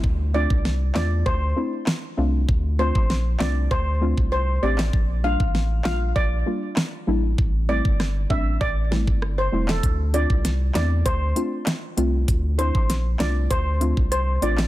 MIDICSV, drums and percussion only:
0, 0, Header, 1, 2, 480
1, 0, Start_track
1, 0, Key_signature, -1, "minor"
1, 0, Tempo, 612245
1, 29, Time_signature, 4, 2, 24, 8
1, 11506, End_track
2, 0, Start_track
2, 0, Title_t, "Drums"
2, 29, Note_on_c, 9, 36, 105
2, 107, Note_off_c, 9, 36, 0
2, 395, Note_on_c, 9, 36, 95
2, 473, Note_off_c, 9, 36, 0
2, 511, Note_on_c, 9, 38, 66
2, 589, Note_off_c, 9, 38, 0
2, 745, Note_on_c, 9, 39, 88
2, 750, Note_on_c, 9, 38, 109
2, 823, Note_off_c, 9, 39, 0
2, 829, Note_off_c, 9, 38, 0
2, 989, Note_on_c, 9, 36, 81
2, 1067, Note_off_c, 9, 36, 0
2, 1462, Note_on_c, 9, 39, 84
2, 1468, Note_on_c, 9, 38, 106
2, 1541, Note_off_c, 9, 39, 0
2, 1546, Note_off_c, 9, 38, 0
2, 1949, Note_on_c, 9, 36, 110
2, 2027, Note_off_c, 9, 36, 0
2, 2315, Note_on_c, 9, 36, 91
2, 2393, Note_off_c, 9, 36, 0
2, 2430, Note_on_c, 9, 38, 65
2, 2509, Note_off_c, 9, 38, 0
2, 2664, Note_on_c, 9, 39, 88
2, 2670, Note_on_c, 9, 38, 109
2, 2743, Note_off_c, 9, 39, 0
2, 2748, Note_off_c, 9, 38, 0
2, 2908, Note_on_c, 9, 36, 85
2, 2987, Note_off_c, 9, 36, 0
2, 3274, Note_on_c, 9, 36, 86
2, 3352, Note_off_c, 9, 36, 0
2, 3749, Note_on_c, 9, 39, 82
2, 3755, Note_on_c, 9, 38, 106
2, 3828, Note_off_c, 9, 39, 0
2, 3834, Note_off_c, 9, 38, 0
2, 3868, Note_on_c, 9, 36, 103
2, 3946, Note_off_c, 9, 36, 0
2, 4234, Note_on_c, 9, 36, 92
2, 4312, Note_off_c, 9, 36, 0
2, 4349, Note_on_c, 9, 38, 69
2, 4427, Note_off_c, 9, 38, 0
2, 4583, Note_on_c, 9, 39, 90
2, 4589, Note_on_c, 9, 38, 113
2, 4662, Note_off_c, 9, 39, 0
2, 4668, Note_off_c, 9, 38, 0
2, 4828, Note_on_c, 9, 36, 80
2, 4906, Note_off_c, 9, 36, 0
2, 5302, Note_on_c, 9, 39, 88
2, 5308, Note_on_c, 9, 38, 108
2, 5380, Note_off_c, 9, 39, 0
2, 5386, Note_off_c, 9, 38, 0
2, 5789, Note_on_c, 9, 36, 106
2, 5867, Note_off_c, 9, 36, 0
2, 6155, Note_on_c, 9, 36, 91
2, 6233, Note_off_c, 9, 36, 0
2, 6271, Note_on_c, 9, 37, 68
2, 6271, Note_on_c, 9, 38, 71
2, 6349, Note_off_c, 9, 37, 0
2, 6349, Note_off_c, 9, 38, 0
2, 6509, Note_on_c, 9, 36, 94
2, 6587, Note_off_c, 9, 36, 0
2, 6749, Note_on_c, 9, 36, 80
2, 6828, Note_off_c, 9, 36, 0
2, 6992, Note_on_c, 9, 38, 66
2, 7070, Note_off_c, 9, 38, 0
2, 7115, Note_on_c, 9, 36, 82
2, 7193, Note_off_c, 9, 36, 0
2, 7230, Note_on_c, 9, 37, 89
2, 7309, Note_off_c, 9, 37, 0
2, 7592, Note_on_c, 9, 39, 82
2, 7597, Note_on_c, 9, 38, 102
2, 7670, Note_off_c, 9, 39, 0
2, 7676, Note_off_c, 9, 38, 0
2, 7709, Note_on_c, 9, 36, 108
2, 7710, Note_on_c, 9, 42, 63
2, 7788, Note_off_c, 9, 36, 0
2, 7789, Note_off_c, 9, 42, 0
2, 7949, Note_on_c, 9, 42, 49
2, 8027, Note_off_c, 9, 42, 0
2, 8075, Note_on_c, 9, 36, 89
2, 8153, Note_off_c, 9, 36, 0
2, 8191, Note_on_c, 9, 38, 68
2, 8191, Note_on_c, 9, 42, 68
2, 8269, Note_off_c, 9, 42, 0
2, 8270, Note_off_c, 9, 38, 0
2, 8426, Note_on_c, 9, 39, 88
2, 8430, Note_on_c, 9, 42, 50
2, 8431, Note_on_c, 9, 38, 110
2, 8504, Note_off_c, 9, 39, 0
2, 8508, Note_off_c, 9, 42, 0
2, 8510, Note_off_c, 9, 38, 0
2, 8668, Note_on_c, 9, 42, 68
2, 8669, Note_on_c, 9, 36, 78
2, 8747, Note_off_c, 9, 36, 0
2, 8747, Note_off_c, 9, 42, 0
2, 8908, Note_on_c, 9, 42, 53
2, 8987, Note_off_c, 9, 42, 0
2, 9143, Note_on_c, 9, 39, 88
2, 9148, Note_on_c, 9, 42, 68
2, 9149, Note_on_c, 9, 38, 105
2, 9221, Note_off_c, 9, 39, 0
2, 9227, Note_off_c, 9, 38, 0
2, 9227, Note_off_c, 9, 42, 0
2, 9389, Note_on_c, 9, 42, 54
2, 9467, Note_off_c, 9, 42, 0
2, 9629, Note_on_c, 9, 36, 103
2, 9629, Note_on_c, 9, 42, 67
2, 9707, Note_off_c, 9, 36, 0
2, 9707, Note_off_c, 9, 42, 0
2, 9869, Note_on_c, 9, 42, 48
2, 9947, Note_off_c, 9, 42, 0
2, 9995, Note_on_c, 9, 36, 94
2, 10073, Note_off_c, 9, 36, 0
2, 10111, Note_on_c, 9, 42, 67
2, 10112, Note_on_c, 9, 38, 65
2, 10190, Note_off_c, 9, 38, 0
2, 10190, Note_off_c, 9, 42, 0
2, 10345, Note_on_c, 9, 39, 89
2, 10349, Note_on_c, 9, 42, 49
2, 10351, Note_on_c, 9, 38, 112
2, 10424, Note_off_c, 9, 39, 0
2, 10428, Note_off_c, 9, 42, 0
2, 10429, Note_off_c, 9, 38, 0
2, 10588, Note_on_c, 9, 42, 69
2, 10589, Note_on_c, 9, 36, 81
2, 10667, Note_off_c, 9, 36, 0
2, 10667, Note_off_c, 9, 42, 0
2, 10828, Note_on_c, 9, 42, 54
2, 10907, Note_off_c, 9, 42, 0
2, 10954, Note_on_c, 9, 36, 82
2, 11032, Note_off_c, 9, 36, 0
2, 11068, Note_on_c, 9, 42, 70
2, 11147, Note_off_c, 9, 42, 0
2, 11308, Note_on_c, 9, 42, 53
2, 11387, Note_off_c, 9, 42, 0
2, 11429, Note_on_c, 9, 39, 84
2, 11435, Note_on_c, 9, 38, 107
2, 11506, Note_off_c, 9, 38, 0
2, 11506, Note_off_c, 9, 39, 0
2, 11506, End_track
0, 0, End_of_file